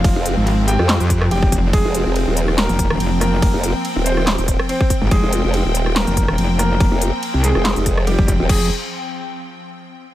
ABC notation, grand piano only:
X:1
M:4/4
L:1/8
Q:"Swing 16ths" 1/4=142
K:Fm
V:1 name="Grand piano"
[Ff]3 [Gg]3 [Gg] z | [A,A]4 [B,B]3 [B,B]- | [B,B]3 [Cc]3 [Cc] z | [A,A]4 [B,B]3 [B,B]- |
[B,B]3 [A,A]3 [G,G] z | A z6 z |]